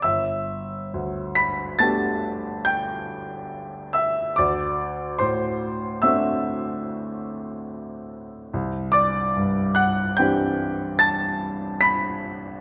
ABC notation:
X:1
M:5/4
L:1/8
Q:1/4=72
K:G
V:1 name="Grand piano"
[ee']3 [bb'] [aa']2 [gg']3 [ee'] | [dd']2 [cc']2 [ee']4 z2 | z [dd']2 [ff'] [gg']2 [aa']2 [bb']2 |]
V:2 name="Grand piano"
G,,,2 D,,2 [A,B,DG]6 | D,,2 A,,2 [A,CDF]6 | C,,2 G,,2 [E,CDG]6 |]